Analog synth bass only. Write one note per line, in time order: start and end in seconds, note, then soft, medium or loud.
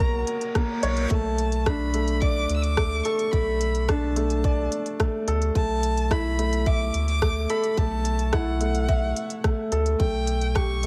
0.00 0.24 B1 loud
0.83 1.06 B1 medium
1.11 2.46 B1 medium
2.50 3.01 D2 medium
3.33 4.68 B1 loud
5.28 5.51 D2 medium
5.55 6.91 B1 loud
6.94 7.46 D2 medium
7.78 9.13 B1 loud
9.72 9.95 D2 medium
10.00 10.87 B1 loud